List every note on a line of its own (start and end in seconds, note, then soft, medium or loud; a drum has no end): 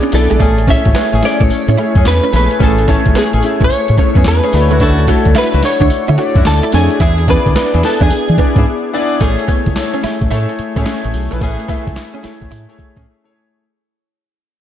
0.00 0.13 B3 medium
0.00 0.10 C#4 medium
0.00 0.13 D4 medium
0.00 0.14 E4 medium
0.00 0.14 G#4 medium
0.00 0.14 D5 medium
0.00 0.42 E5 loud
0.00 closed hi-hat medium
0.12 0.27 B1 loud
0.12 0.40 B3 medium
0.12 0.40 D4 medium
0.12 0.40 E4 medium
0.12 0.41 G#4 medium
0.12 0.70 A4 loud
0.12 0.41 D5 medium
0.12 muted clean electric guitar stroke medium
0.12 open hi-hat medium
0.12 tambourine medium
0.30 0.38 A#1 medium
0.30 0.38 G#3 medium
0.30 closed hi-hat medium
0.39 0.75 A1 loud
0.39 0.66 A3 loud
0.39 0.54 A3 medium
0.39 0.66 C#4 medium
0.39 0.66 G#4 loud
0.39 kick loud
0.39 closed hi-hat medium
0.39 tambourine medium
0.58 muted clean electric guitar stroke soft
0.58 closed hi-hat medium
0.67 1.03 A3 medium
0.67 0.82 C#4 medium
0.67 1.03 C#4 medium
0.67 1.03 E4 medium
0.67 1.03 G#4 medium
0.67 1.03 C#5 loud
0.67 1.25 E5 loud
0.67 kick loud
0.67 closed hi-hat medium
0.67 tambourine medium
0.85 0.93 G#1 loud
0.85 kick loud
0.85 closed hi-hat medium
0.95 1.09 B3 medium
0.95 snare loud
0.95 clap loud
0.95 closed hi-hat medium
0.95 tambourine medium
1.12 1.21 A1 loud
1.12 1.22 A3 medium
1.12 1.22 C#4 medium
1.12 1.22 G#4 medium
1.12 muted clean electric guitar stroke medium
1.12 closed hi-hat medium
1.23 1.57 A3 medium
1.23 1.58 C#4 medium
1.23 1.58 E4 medium
1.23 1.58 G#4 medium
1.23 1.58 C#5 loud
1.23 1.43 D5 loud
1.23 snare medium
1.23 closed hi-hat medium
1.23 tambourine medium
1.40 1.48 A1 medium
1.40 1.48 A3 medium
1.40 2.07 C#5 loud
1.40 kick loud
1.40 closed hi-hat medium
1.50 muted clean electric guitar stroke soft
1.50 muted fingered electric bass stroke medium
1.50 closed hi-hat medium
1.50 tambourine medium
1.68 1.75 A2 loud
1.68 1.76 C#4 medium
1.68 closed hi-hat medium
1.78 2.12 A3 medium
1.78 2.13 C#4 medium
1.78 1.92 E4 medium
1.78 2.13 E4 medium
1.78 2.13 G#4 medium
1.78 2.13 C#5 medium
1.78 closed hi-hat medium
1.95 2.03 F#2 medium
1.95 2.05 A3 medium
1.95 2.05 C#4 medium
1.95 2.05 G#4 medium
1.95 kick loud
1.95 closed hi-hat medium
2.05 2.19 E2 medium
2.05 2.35 B4 loud
2.05 muted clean electric guitar stroke soft
2.05 snare loud
2.05 clap loud
2.05 closed hi-hat medium
2.05 tambourine loud
2.24 2.31 C#4 medium
2.24 closed hi-hat medium
2.33 2.47 A#1 loud
2.33 2.67 A3 loud
2.33 2.47 B3 medium
2.33 2.68 C#4 medium
2.33 2.68 E4 medium
2.33 2.68 G#4 medium
2.33 2.68 B4 medium
2.33 2.62 B4 loud
2.33 open hi-hat medium
2.33 tambourine medium
2.51 closed hi-hat medium
2.60 2.95 A1 loud
2.60 2.86 A3 loud
2.60 2.74 A3 medium
2.60 2.86 C#4 medium
2.60 2.86 G#4 loud
2.60 3.18 A4 loud
2.60 kick loud
2.60 closed hi-hat medium
2.60 tambourine medium
2.78 muted clean electric guitar stroke soft
2.78 closed hi-hat medium
2.88 3.23 A3 medium
2.88 3.02 C#4 medium
2.88 3.23 C#4 medium
2.88 3.23 E4 medium
2.88 3.23 G#4 medium
2.88 3.23 C#5 loud
2.88 kick loud
2.88 closed hi-hat medium
2.88 tambourine medium
3.06 3.13 G#1 medium
3.06 kick medium
3.06 closed hi-hat medium
3.15 3.29 B3 medium
3.15 3.63 G#4 medium
3.15 snare loud
3.15 clap loud
3.15 closed hi-hat medium
3.15 tambourine medium
3.33 3.41 A1 loud
3.33 3.42 A3 medium
3.33 3.43 C#4 medium
3.33 3.43 G#4 medium
3.33 muted clean electric guitar stroke soft
3.33 closed hi-hat medium
3.43 3.78 A3 medium
3.43 3.78 C#4 medium
3.43 3.78 E4 medium
3.43 3.78 G#4 medium
3.43 3.78 E5 medium
3.43 closed hi-hat medium
3.43 tambourine medium
3.61 3.68 A1 medium
3.61 3.68 A3 medium
3.61 4.27 C#5 loud
3.61 kick medium
3.61 closed hi-hat medium
3.70 muted clean electric guitar stroke soft
3.70 muted fingered electric bass stroke medium
3.70 closed hi-hat medium
3.70 tambourine medium
3.88 3.96 A2 loud
3.88 closed hi-hat medium
3.98 4.33 A3 medium
3.98 4.12 C#4 medium
3.98 4.33 C#4 medium
3.98 4.33 E4 medium
3.98 4.33 G#4 medium
3.98 4.33 C#5 medium
3.98 kick loud
3.98 closed hi-hat medium
4.15 4.23 F#2 medium
4.15 4.25 A3 medium
4.15 4.24 B3 medium
4.15 4.25 C#4 medium
4.15 4.25 G#4 medium
4.15 kick loud
4.15 closed hi-hat medium
4.24 4.40 E2 loud
4.24 4.83 B4 loud
4.24 snare loud
4.24 clap medium
4.24 closed hi-hat medium
4.24 tambourine loud
4.43 4.52 A3 medium
4.43 4.53 C#4 medium
4.43 4.51 C#4 medium
4.43 4.53 G#4 medium
4.43 closed hi-hat medium
4.52 5.09 D2 loud
4.52 5.01 A3 medium
4.52 5.01 D4 medium
4.52 5.01 E4 medium
4.52 5.01 F#4 medium
4.52 4.62 B4 medium
4.52 muted clean electric guitar stroke medium
4.52 open hi-hat medium
4.52 tambourine medium
4.61 5.04 C#5 loud
4.70 4.78 A3 medium
4.70 4.78 C#4 medium
4.70 4.78 E4 medium
4.70 4.79 F#4 medium
4.70 closed hi-hat medium
4.79 5.06 C#4 loud
4.79 4.94 D4 medium
4.79 5.06 E4 loud
4.79 5.06 F#4 loud
4.79 5.38 A4 medium
4.79 kick loud
4.79 closed hi-hat medium
4.79 tambourine medium
4.98 muted clean electric guitar stroke soft
4.98 closed hi-hat medium
5.07 5.43 A3 loud
5.07 5.43 D4 medium
5.07 5.43 E4 medium
5.07 5.22 F#4 medium
5.07 5.43 F#4 medium
5.07 5.43 C#5 loud
5.07 kick medium
5.07 closed hi-hat medium
5.07 tambourine medium
5.25 5.33 D2 loud
5.25 kick loud
5.25 closed hi-hat medium
5.35 5.49 E4 loud
5.35 5.62 B4 medium
5.35 snare loud
5.35 clap medium
5.35 closed hi-hat medium
5.35 tambourine medium
5.53 5.61 C#2 medium
5.53 5.62 C#4 medium
5.53 5.63 E4 medium
5.53 5.63 F#4 medium
5.53 muted clean electric guitar stroke soft
5.53 closed hi-hat medium
5.63 5.98 A3 medium
5.63 5.98 D4 medium
5.63 5.98 E4 medium
5.63 5.98 F#4 medium
5.63 5.98 C#5 medium
5.63 6.46 C#5 loud
5.63 snare medium
5.63 closed hi-hat medium
5.63 tambourine medium
5.81 5.88 D2 medium
5.81 5.88 D4 medium
5.81 kick medium
5.81 closed hi-hat medium
5.90 muted clean electric guitar stroke soft
5.90 muted fingered electric bass stroke medium
5.90 closed hi-hat medium
5.90 tambourine medium
6.08 6.16 D3 loud
6.08 6.16 E4 medium
6.08 closed hi-hat medium
6.18 6.53 A3 medium
6.18 6.53 D4 medium
6.18 6.53 E4 medium
6.18 6.32 F#4 medium
6.18 6.53 F#4 medium
6.18 6.53 D5 medium
6.18 closed hi-hat medium
6.35 6.43 F#2 medium
6.35 6.45 C#4 medium
6.35 6.45 E4 medium
6.35 6.45 F#4 medium
6.35 kick loud
6.35 closed hi-hat medium
6.45 6.60 D2 medium
6.45 6.74 A4 medium
6.45 muted clean electric guitar stroke soft
6.45 snare loud
6.45 clap medium
6.45 closed hi-hat medium
6.45 tambourine loud
6.63 6.71 E4 medium
6.63 closed hi-hat medium
6.72 6.87 F2 loud
6.72 7.00 A3 medium
6.72 6.87 D4 medium
6.72 7.00 D4 medium
6.72 7.01 E4 medium
6.72 7.01 F#4 medium
6.72 7.30 G#4 medium
6.72 7.01 C#5 loud
6.72 open hi-hat medium
6.72 tambourine medium
6.90 closed hi-hat medium
7.00 7.35 E2 loud
7.00 7.26 D4 loud
7.00 7.26 E4 medium
7.00 7.15 E4 loud
7.00 7.26 G#4 loud
7.00 kick loud
7.00 closed hi-hat medium
7.00 tambourine medium
7.18 muted clean electric guitar stroke soft
7.18 closed hi-hat medium
7.28 7.63 B3 medium
7.28 7.42 C#4 medium
7.28 7.63 D4 medium
7.28 7.63 E4 medium
7.28 7.63 G#4 medium
7.28 7.85 B4 loud
7.28 7.63 D5 loud
7.28 kick loud
7.28 closed hi-hat medium
7.28 tambourine medium
7.46 7.54 D2 loud
7.46 kick medium
7.46 closed hi-hat medium
7.56 7.70 B3 medium
7.56 snare loud
7.56 clap medium
7.56 closed hi-hat medium
7.56 tambourine medium
7.73 7.81 E2 medium
7.73 7.83 D4 medium
7.73 7.83 E4 medium
7.73 7.83 G#4 medium
7.73 muted clean electric guitar stroke soft
7.73 closed hi-hat medium
7.83 8.18 B3 medium
7.83 8.18 D4 medium
7.83 8.18 E4 medium
7.83 8.18 G#4 medium
7.83 8.02 A4 medium
7.83 8.18 B4 medium
7.83 snare medium
7.83 open hi-hat medium
7.83 tambourine medium
8.01 8.08 E2 medium
8.01 8.08 D4 medium
8.01 8.90 G#4 medium
8.01 kick loud
8.01 closed hi-hat medium
8.10 muted clean electric guitar stroke soft
8.10 muted fingered electric bass stroke medium
8.10 closed hi-hat medium
8.10 tambourine medium
8.29 8.36 E3 loud
8.29 closed hi-hat medium
8.38 8.52 B3 medium
8.38 8.73 B3 medium
8.38 8.73 D4 medium
8.38 8.73 E4 medium
8.38 8.73 G#4 medium
8.38 8.74 D5 medium
8.38 kick loud
8.38 closed hi-hat medium
8.56 8.63 G#2 medium
8.56 8.64 C#4 medium
8.56 8.66 D4 medium
8.56 8.66 E4 medium
8.56 8.66 G#4 medium
8.56 kick loud
8.56 closed hi-hat medium
8.93 9.21 B3 loud
8.93 9.21 D4 medium
8.93 9.20 E4 loud
8.93 9.20 G#4 loud
8.93 9.21 D5 loud
9.21 9.35 A1 loud
9.21 9.47 A3 loud
9.21 9.35 A3 loud
9.21 9.56 A3 loud
9.21 9.47 C#4 medium
9.21 9.56 E4 medium
9.21 9.47 G#4 loud
9.21 9.56 G#4 medium
9.21 9.56 C#5 loud
9.21 kick loud
9.21 closed hi-hat medium
9.21 tambourine medium
9.39 muted clean electric guitar stroke soft
9.39 closed hi-hat medium
9.48 9.62 B3 medium
9.48 kick loud
9.48 closed hi-hat medium
9.48 tambourine medium
9.66 9.74 C#2 loud
9.66 kick medium
9.66 closed hi-hat medium
9.76 10.10 A3 medium
9.76 10.11 E4 medium
9.76 10.11 G#4 medium
9.76 10.11 C#5 loud
9.76 muted clean electric guitar stroke soft
9.76 snare loud
9.76 clap medium
9.76 closed hi-hat medium
9.76 tambourine medium
9.93 10.03 A3 medium
9.93 10.01 C#4 medium
9.93 10.03 C#4 medium
9.93 10.03 G#4 medium
9.93 closed hi-hat medium
10.03 10.17 E4 medium
10.03 muted fingered electric bass stroke medium
10.03 snare medium
10.03 closed hi-hat medium
10.03 tambourine medium
10.21 10.29 A1 medium
10.21 kick medium
10.21 closed hi-hat medium
10.31 10.45 A2 loud
10.31 10.56 A3 loud
10.31 10.45 E4 medium
10.31 10.57 E4 medium
10.31 10.57 G#4 medium
10.31 10.57 C#5 loud
10.31 closed hi-hat medium
10.31 tambourine medium
10.49 muted clean electric guitar stroke soft
10.49 closed hi-hat medium
10.59 muted fingered electric bass stroke soft
10.59 closed hi-hat medium
10.76 10.84 A2 medium
10.76 10.85 A3 medium
10.76 11.08 A3 loud
10.76 10.86 C#4 medium
10.76 10.84 C#4 medium
10.76 11.08 E4 loud
10.76 10.86 G#4 medium
10.76 11.08 G#4 loud
10.76 11.08 C#5 loud
10.76 kick loud
10.76 closed hi-hat medium
10.85 11.00 C#4 medium
10.85 snare loud
10.85 clap medium
10.85 closed hi-hat medium
10.85 tambourine medium
11.04 11.12 A1 medium
11.04 muted clean electric guitar stroke soft
11.04 closed hi-hat medium
11.14 11.28 B1 medium
11.14 open hi-hat medium
11.14 tambourine medium
11.31 11.39 A#1 medium
11.31 11.38 A3 medium
11.31 11.56 A3 medium
11.31 11.56 E4 medium
11.31 11.56 G#4 medium
11.31 11.56 B4 medium
11.31 closed hi-hat medium
11.41 11.55 A1 loud
11.41 11.55 A3 medium
11.41 11.67 A3 medium
11.41 11.67 C#4 medium
11.41 11.67 G#4 loud
11.41 kick loud
11.41 closed hi-hat medium
11.41 tambourine medium
11.59 muted clean electric guitar stroke soft
11.59 closed hi-hat medium
11.68 12.03 A3 loud
11.68 11.82 B3 medium
11.68 12.03 E4 medium
11.68 12.04 G#4 medium
11.68 12.04 E5 loud
11.68 kick medium
11.68 closed hi-hat medium
11.68 tambourine medium
11.87 11.94 C#2 medium
11.87 kick medium
11.87 closed hi-hat medium
11.96 muted clean electric guitar stroke soft
11.96 snare loud
11.96 clap medium
11.96 closed hi-hat medium
11.96 tambourine medium
12.14 12.23 A3 medium
12.14 12.21 C#4 medium
12.14 12.23 C#4 medium
12.14 12.24 G#4 medium
12.14 closed hi-hat medium
12.23 12.49 A3 loud
12.23 12.37 E4 medium
12.23 12.49 E4 medium
12.23 12.49 G#4 medium
12.23 12.50 C#5 loud
12.23 muted fingered electric bass stroke medium
12.23 snare medium
12.23 closed hi-hat medium
12.23 tambourine medium
12.42 12.49 A1 medium
12.42 kick medium
12.42 closed hi-hat medium
12.51 12.65 A2 loud
12.51 12.65 E4 medium
12.51 closed hi-hat medium
12.51 tambourine medium
12.69 13.00 A3 medium
12.69 13.00 E4 medium
12.69 13.01 G#4 medium
12.69 13.01 C#5 loud
12.69 muted clean electric guitar stroke soft
12.69 closed hi-hat soft
12.79 muted fingered electric bass stroke medium
12.79 kick loud
12.79 closed hi-hat medium
12.96 13.04 A2 medium
12.96 13.06 A3 medium
12.96 13.06 C#4 medium
12.96 13.04 C#4 medium
12.96 13.06 G#4 medium
12.96 kick loud
12.96 closed hi-hat medium
13.24 13.48 A3 medium
13.24 13.48 E4 medium
13.24 13.48 G#4 medium
13.24 13.49 C#5 loud